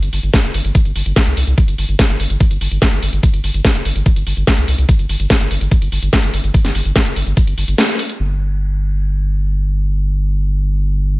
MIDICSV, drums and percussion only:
0, 0, Header, 1, 2, 480
1, 0, Start_track
1, 0, Tempo, 413793
1, 1829, Time_signature, 4, 2, 24, 8
1, 12990, End_track
2, 0, Start_track
2, 0, Title_t, "Drums"
2, 29, Note_on_c, 9, 42, 51
2, 145, Note_off_c, 9, 42, 0
2, 149, Note_on_c, 9, 46, 106
2, 265, Note_off_c, 9, 46, 0
2, 269, Note_on_c, 9, 42, 48
2, 385, Note_off_c, 9, 42, 0
2, 389, Note_on_c, 9, 38, 120
2, 389, Note_on_c, 9, 42, 74
2, 390, Note_on_c, 9, 36, 124
2, 505, Note_off_c, 9, 38, 0
2, 505, Note_off_c, 9, 42, 0
2, 506, Note_off_c, 9, 36, 0
2, 509, Note_on_c, 9, 42, 51
2, 625, Note_off_c, 9, 42, 0
2, 629, Note_on_c, 9, 46, 108
2, 745, Note_off_c, 9, 46, 0
2, 749, Note_on_c, 9, 42, 51
2, 865, Note_off_c, 9, 42, 0
2, 869, Note_on_c, 9, 42, 72
2, 870, Note_on_c, 9, 36, 122
2, 985, Note_off_c, 9, 42, 0
2, 986, Note_off_c, 9, 36, 0
2, 989, Note_on_c, 9, 42, 53
2, 1105, Note_off_c, 9, 42, 0
2, 1109, Note_on_c, 9, 46, 110
2, 1225, Note_off_c, 9, 46, 0
2, 1229, Note_on_c, 9, 42, 51
2, 1345, Note_off_c, 9, 42, 0
2, 1349, Note_on_c, 9, 36, 125
2, 1349, Note_on_c, 9, 38, 117
2, 1349, Note_on_c, 9, 42, 76
2, 1465, Note_off_c, 9, 36, 0
2, 1465, Note_off_c, 9, 38, 0
2, 1465, Note_off_c, 9, 42, 0
2, 1469, Note_on_c, 9, 42, 49
2, 1585, Note_off_c, 9, 42, 0
2, 1589, Note_on_c, 9, 46, 110
2, 1705, Note_off_c, 9, 46, 0
2, 1709, Note_on_c, 9, 42, 54
2, 1825, Note_off_c, 9, 42, 0
2, 1829, Note_on_c, 9, 36, 121
2, 1829, Note_on_c, 9, 42, 78
2, 1945, Note_off_c, 9, 36, 0
2, 1945, Note_off_c, 9, 42, 0
2, 1949, Note_on_c, 9, 42, 52
2, 2065, Note_off_c, 9, 42, 0
2, 2069, Note_on_c, 9, 46, 102
2, 2185, Note_off_c, 9, 46, 0
2, 2189, Note_on_c, 9, 42, 47
2, 2305, Note_off_c, 9, 42, 0
2, 2309, Note_on_c, 9, 36, 119
2, 2309, Note_on_c, 9, 38, 114
2, 2309, Note_on_c, 9, 42, 74
2, 2425, Note_off_c, 9, 36, 0
2, 2425, Note_off_c, 9, 38, 0
2, 2425, Note_off_c, 9, 42, 0
2, 2429, Note_on_c, 9, 42, 53
2, 2545, Note_off_c, 9, 42, 0
2, 2549, Note_on_c, 9, 46, 104
2, 2665, Note_off_c, 9, 46, 0
2, 2669, Note_on_c, 9, 42, 50
2, 2785, Note_off_c, 9, 42, 0
2, 2789, Note_on_c, 9, 36, 115
2, 2789, Note_on_c, 9, 42, 75
2, 2905, Note_off_c, 9, 36, 0
2, 2905, Note_off_c, 9, 42, 0
2, 2909, Note_on_c, 9, 42, 50
2, 3025, Note_off_c, 9, 42, 0
2, 3029, Note_on_c, 9, 46, 108
2, 3145, Note_off_c, 9, 46, 0
2, 3149, Note_on_c, 9, 42, 50
2, 3265, Note_off_c, 9, 42, 0
2, 3269, Note_on_c, 9, 36, 116
2, 3269, Note_on_c, 9, 38, 114
2, 3269, Note_on_c, 9, 42, 76
2, 3385, Note_off_c, 9, 36, 0
2, 3385, Note_off_c, 9, 38, 0
2, 3385, Note_off_c, 9, 42, 0
2, 3389, Note_on_c, 9, 42, 48
2, 3505, Note_off_c, 9, 42, 0
2, 3509, Note_on_c, 9, 46, 109
2, 3625, Note_off_c, 9, 46, 0
2, 3629, Note_on_c, 9, 42, 52
2, 3745, Note_off_c, 9, 42, 0
2, 3749, Note_on_c, 9, 36, 116
2, 3749, Note_on_c, 9, 42, 81
2, 3865, Note_off_c, 9, 36, 0
2, 3865, Note_off_c, 9, 42, 0
2, 3869, Note_on_c, 9, 42, 53
2, 3985, Note_off_c, 9, 42, 0
2, 3989, Note_on_c, 9, 46, 104
2, 4105, Note_off_c, 9, 46, 0
2, 4109, Note_on_c, 9, 42, 51
2, 4225, Note_off_c, 9, 42, 0
2, 4229, Note_on_c, 9, 36, 119
2, 4229, Note_on_c, 9, 38, 113
2, 4229, Note_on_c, 9, 42, 77
2, 4345, Note_off_c, 9, 36, 0
2, 4345, Note_off_c, 9, 38, 0
2, 4345, Note_off_c, 9, 42, 0
2, 4349, Note_on_c, 9, 42, 54
2, 4465, Note_off_c, 9, 42, 0
2, 4469, Note_on_c, 9, 46, 99
2, 4585, Note_off_c, 9, 46, 0
2, 4589, Note_on_c, 9, 42, 53
2, 4705, Note_off_c, 9, 42, 0
2, 4709, Note_on_c, 9, 36, 112
2, 4709, Note_on_c, 9, 42, 80
2, 4825, Note_off_c, 9, 36, 0
2, 4825, Note_off_c, 9, 42, 0
2, 4829, Note_on_c, 9, 42, 53
2, 4945, Note_off_c, 9, 42, 0
2, 4949, Note_on_c, 9, 46, 101
2, 5065, Note_off_c, 9, 46, 0
2, 5069, Note_on_c, 9, 42, 52
2, 5185, Note_off_c, 9, 42, 0
2, 5189, Note_on_c, 9, 36, 112
2, 5189, Note_on_c, 9, 38, 113
2, 5189, Note_on_c, 9, 42, 78
2, 5305, Note_off_c, 9, 36, 0
2, 5305, Note_off_c, 9, 38, 0
2, 5305, Note_off_c, 9, 42, 0
2, 5309, Note_on_c, 9, 42, 52
2, 5425, Note_off_c, 9, 42, 0
2, 5429, Note_on_c, 9, 46, 104
2, 5545, Note_off_c, 9, 46, 0
2, 5549, Note_on_c, 9, 42, 53
2, 5665, Note_off_c, 9, 42, 0
2, 5669, Note_on_c, 9, 36, 116
2, 5669, Note_on_c, 9, 42, 83
2, 5785, Note_off_c, 9, 36, 0
2, 5785, Note_off_c, 9, 42, 0
2, 5789, Note_on_c, 9, 42, 56
2, 5905, Note_off_c, 9, 42, 0
2, 5909, Note_on_c, 9, 46, 103
2, 6025, Note_off_c, 9, 46, 0
2, 6029, Note_on_c, 9, 42, 54
2, 6145, Note_off_c, 9, 42, 0
2, 6149, Note_on_c, 9, 36, 114
2, 6149, Note_on_c, 9, 38, 116
2, 6149, Note_on_c, 9, 42, 82
2, 6265, Note_off_c, 9, 36, 0
2, 6265, Note_off_c, 9, 38, 0
2, 6265, Note_off_c, 9, 42, 0
2, 6269, Note_on_c, 9, 42, 55
2, 6385, Note_off_c, 9, 42, 0
2, 6389, Note_on_c, 9, 46, 97
2, 6505, Note_off_c, 9, 46, 0
2, 6509, Note_on_c, 9, 42, 55
2, 6625, Note_off_c, 9, 42, 0
2, 6629, Note_on_c, 9, 36, 107
2, 6629, Note_on_c, 9, 42, 79
2, 6745, Note_off_c, 9, 36, 0
2, 6745, Note_off_c, 9, 42, 0
2, 6749, Note_on_c, 9, 42, 57
2, 6865, Note_off_c, 9, 42, 0
2, 6869, Note_on_c, 9, 46, 97
2, 6985, Note_off_c, 9, 46, 0
2, 6989, Note_on_c, 9, 42, 53
2, 7105, Note_off_c, 9, 42, 0
2, 7109, Note_on_c, 9, 36, 112
2, 7109, Note_on_c, 9, 38, 117
2, 7109, Note_on_c, 9, 42, 82
2, 7225, Note_off_c, 9, 36, 0
2, 7225, Note_off_c, 9, 38, 0
2, 7225, Note_off_c, 9, 42, 0
2, 7229, Note_on_c, 9, 42, 54
2, 7345, Note_off_c, 9, 42, 0
2, 7349, Note_on_c, 9, 46, 104
2, 7465, Note_off_c, 9, 46, 0
2, 7469, Note_on_c, 9, 42, 56
2, 7585, Note_off_c, 9, 42, 0
2, 7589, Note_on_c, 9, 36, 113
2, 7589, Note_on_c, 9, 42, 84
2, 7705, Note_off_c, 9, 36, 0
2, 7705, Note_off_c, 9, 42, 0
2, 7709, Note_on_c, 9, 38, 38
2, 7709, Note_on_c, 9, 42, 58
2, 7825, Note_off_c, 9, 38, 0
2, 7825, Note_off_c, 9, 42, 0
2, 7829, Note_on_c, 9, 46, 100
2, 7945, Note_off_c, 9, 46, 0
2, 7949, Note_on_c, 9, 42, 53
2, 8065, Note_off_c, 9, 42, 0
2, 8069, Note_on_c, 9, 36, 114
2, 8069, Note_on_c, 9, 38, 120
2, 8069, Note_on_c, 9, 42, 85
2, 8185, Note_off_c, 9, 36, 0
2, 8185, Note_off_c, 9, 38, 0
2, 8185, Note_off_c, 9, 42, 0
2, 8189, Note_on_c, 9, 42, 57
2, 8305, Note_off_c, 9, 42, 0
2, 8309, Note_on_c, 9, 46, 100
2, 8425, Note_off_c, 9, 46, 0
2, 8429, Note_on_c, 9, 42, 55
2, 8545, Note_off_c, 9, 42, 0
2, 8549, Note_on_c, 9, 36, 116
2, 8549, Note_on_c, 9, 42, 85
2, 8665, Note_off_c, 9, 36, 0
2, 8665, Note_off_c, 9, 42, 0
2, 8669, Note_on_c, 9, 42, 57
2, 8785, Note_off_c, 9, 42, 0
2, 8789, Note_on_c, 9, 46, 105
2, 8905, Note_off_c, 9, 46, 0
2, 8909, Note_on_c, 9, 42, 53
2, 9025, Note_off_c, 9, 42, 0
2, 9029, Note_on_c, 9, 38, 115
2, 9029, Note_on_c, 9, 42, 81
2, 9145, Note_off_c, 9, 38, 0
2, 9145, Note_off_c, 9, 42, 0
2, 9149, Note_on_c, 9, 42, 55
2, 9265, Note_off_c, 9, 42, 0
2, 9269, Note_on_c, 9, 46, 103
2, 9385, Note_off_c, 9, 46, 0
2, 9389, Note_on_c, 9, 42, 57
2, 9505, Note_off_c, 9, 42, 0
2, 9509, Note_on_c, 9, 49, 84
2, 9625, Note_off_c, 9, 49, 0
2, 12990, End_track
0, 0, End_of_file